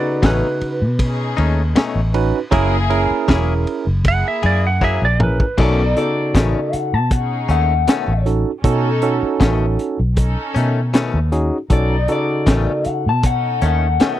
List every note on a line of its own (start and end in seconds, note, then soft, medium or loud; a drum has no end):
0.00 0.80 C#3 medium
0.00 0.23 B3 medium
0.00 0.23 D#4 medium
0.00 0.80 D#4 medium
0.00 0.80 F#4 medium
0.00 0.24 A4 loud
0.00 0.80 B4 medium
0.00 0.23 D5 medium
0.23 0.41 A1 loud
0.23 0.46 B2 medium
0.23 0.47 A3 medium
0.23 0.47 C#4 medium
0.23 0.47 D#4 medium
0.23 2.50 B4 loud
0.23 kick medium
0.23 snare loud
0.23 ride medium
0.61 muted fingered electric bass stroke soft
0.61 ride medium
0.82 1.34 B2 medium
0.99 1.75 C#4 medium
0.99 1.76 D#4 medium
0.99 1.77 G#4 medium
0.99 kick medium
0.99 ride medium
1.37 1.73 D#2 loud
1.37 1.63 A3 medium
1.37 1.62 C#4 medium
1.37 1.61 D#4 medium
1.37 ride medium
1.76 1.99 B2 medium
1.76 2.00 A3 loud
1.76 2.00 C#4 loud
1.76 2.01 D#4 loud
1.76 muted fingered electric bass stroke soft
1.76 snare loud
1.76 ride medium
1.96 2.31 A1 loud
2.14 2.38 C#4 medium
2.14 2.38 D#4 medium
2.14 2.39 F#4 medium
2.14 2.39 B4 medium
2.14 ride medium
2.51 3.07 F#1 loud
2.51 2.76 F#3 medium
2.51 3.28 A#3 loud
2.51 2.76 A#3 medium
2.51 2.76 C#4 medium
2.51 2.76 E4 medium
2.51 3.29 E4 medium
2.51 2.76 E4 medium
2.51 2.76 G#4 medium
2.51 3.29 G#4 loud
2.51 2.77 G#4 medium
2.51 2.76 A#4 loud
2.51 kick loud
2.51 ride medium
2.90 3.86 C#4 medium
2.90 3.86 E4 medium
2.90 3.85 G#4 medium
2.90 3.86 A#4 loud
2.90 ride medium
3.11 muted fingered electric bass stroke soft
3.28 3.64 E1 loud
3.28 3.52 F#3 medium
3.28 3.53 A#3 medium
3.28 3.53 E4 loud
3.28 3.53 G#4 medium
3.28 kick medium
3.28 snare loud
3.28 ride medium
3.67 ride medium
3.87 4.22 F#1 loud
4.04 4.82 A#3 medium
4.04 4.82 E4 medium
4.04 4.83 G#4 medium
4.04 4.26 F#5 loud
4.04 kick medium
4.04 ride medium
4.28 4.44 E5 loud
4.43 4.98 F#2 medium
4.43 4.69 A#3 soft
4.43 4.68 E4 medium
4.43 4.67 G#4 medium
4.43 4.64 D5 medium
4.43 ride medium
4.67 4.83 F#5 medium
4.81 5.05 F#3 medium
4.81 5.06 A#3 medium
4.81 5.06 E4 medium
4.81 5.06 G#4 loud
4.81 5.03 E5 medium
4.81 kick medium
5.02 5.37 A#1 medium
5.02 5.21 D5 medium
5.20 5.44 C#4 medium
5.20 5.44 E4 medium
5.20 5.44 G#4 medium
5.20 5.44 A#4 medium
5.20 5.59 B4 loud
5.20 mid tom medium
5.40 kick medium
5.57 5.94 B1 loud
5.57 5.82 B2 medium
5.57 5.82 D#3 medium
5.57 5.83 A3 medium
5.57 6.34 B3 medium
5.57 5.83 C#4 medium
5.57 6.35 D#4 medium
5.57 5.83 D#4 medium
5.57 5.83 F#4 medium
5.57 5.83 A4 medium
5.57 6.35 A4 medium
5.57 5.96 D5 medium
5.57 kick loud
5.57 crash loud
5.97 6.92 C#3 medium
5.97 6.92 D#4 medium
5.97 6.92 F#4 medium
5.97 6.92 A4 medium
5.97 6.74 D5 medium
5.97 closed hi-hat medium
6.35 6.53 A1 medium
6.35 6.58 B2 medium
6.35 6.59 D#3 medium
6.35 6.59 A3 medium
6.35 6.60 C#4 medium
6.35 kick medium
6.35 snare loud
6.35 closed hi-hat medium
6.73 6.94 F#5 medium
6.73 muted fingered electric bass stroke soft
6.73 closed hi-hat medium
6.94 7.46 B2 medium
6.94 7.12 A5 medium
7.11 7.88 C#4 medium
7.11 7.88 D#4 medium
7.11 7.89 G#4 medium
7.11 7.49 F#5 medium
7.11 kick medium
7.11 closed hi-hat medium
7.49 7.85 D#2 medium
7.49 7.75 D#3 soft
7.49 7.74 A3 soft
7.49 7.73 C#4 medium
7.49 8.25 F#5 medium
7.49 closed hi-hat medium
7.88 8.12 B2 medium
7.88 8.12 D#3 medium
7.88 8.12 A3 medium
7.88 8.13 C#4 medium
7.88 muted fingered electric bass stroke soft
7.88 snare loud
7.88 closed hi-hat medium
8.08 8.43 A1 medium
8.26 8.50 C#4 medium
8.26 8.50 D#4 medium
8.26 8.51 F#4 medium
8.26 8.51 A4 medium
8.26 closed hi-hat medium
8.63 9.19 B2 loud
8.63 9.40 C#4 loud
8.63 8.89 C#4 medium
8.63 9.41 D#4 medium
8.63 8.89 D#4 medium
8.63 8.89 F#4 medium
8.63 8.89 A4 medium
8.63 9.41 A4 loud
8.63 kick loud
8.63 closed hi-hat medium
9.02 9.98 C#4 medium
9.02 9.98 D#4 medium
9.02 9.98 F#4 medium
9.02 9.98 A4 medium
9.02 closed hi-hat medium
9.23 muted fingered electric bass stroke soft
9.40 9.76 A1 loud
9.40 9.64 B2 medium
9.40 9.65 D#3 medium
9.40 9.65 A3 medium
9.40 9.66 C#4 medium
9.40 kick medium
9.40 snare loud
9.40 closed hi-hat medium
9.79 closed hi-hat medium
10.00 10.35 B1 medium
10.16 10.93 C#4 medium
10.16 10.94 D#4 medium
10.16 10.94 A4 loud
10.16 kick medium
10.16 closed hi-hat medium
10.55 11.10 B2 medium
10.55 10.81 D#3 medium
10.55 10.80 A3 medium
10.55 10.79 C#4 medium
10.55 closed hi-hat medium
10.94 11.18 B2 medium
10.94 11.18 D#3 medium
10.94 11.19 A3 medium
10.94 11.19 C#4 loud
10.94 snare loud
10.94 closed hi-hat medium
11.14 11.50 D#2 medium
11.32 11.57 C#4 medium
11.32 11.57 D#4 medium
11.32 11.57 F#4 medium
11.32 11.57 G#4 medium
11.32 closed hi-hat medium
11.69 12.06 B1 medium
11.69 12.47 B3 medium
11.69 11.95 C#4 medium
11.69 11.95 D#4 medium
11.69 12.47 D#4 medium
11.69 11.95 F#4 medium
11.69 11.95 A4 medium
11.69 12.09 D5 medium
11.69 kick loud
11.69 closed hi-hat medium
12.08 13.04 C#3 medium
12.08 13.04 D#4 medium
12.08 13.04 F#4 medium
12.08 13.04 A4 medium
12.08 12.88 D5 medium
12.08 closed hi-hat medium
12.47 12.66 A1 loud
12.47 12.71 B2 medium
12.47 12.71 D#3 medium
12.47 12.72 A3 medium
12.47 12.72 C#4 medium
12.47 kick medium
12.47 snare loud
12.47 closed hi-hat medium
12.85 13.07 F#5 medium
12.85 muted fingered electric bass stroke soft
12.85 closed hi-hat medium
13.06 13.59 B2 medium
13.06 13.25 A5 medium
13.21 13.99 C#4 medium
13.21 14.00 D#4 medium
13.21 14.00 A4 medium
13.21 kick medium
13.21 closed hi-hat medium
13.26 13.62 F#5 medium
13.62 13.98 D#2 medium
13.62 13.88 D#3 soft
13.62 13.87 A3 soft
13.62 13.86 C#4 medium
13.62 14.20 F#5 medium
13.62 closed hi-hat medium
14.00 14.20 B2 medium
14.00 14.20 D#3 medium
14.00 14.20 A3 medium
14.00 14.20 C#4 medium
14.00 muted fingered electric bass stroke soft
14.00 snare loud
14.00 closed hi-hat medium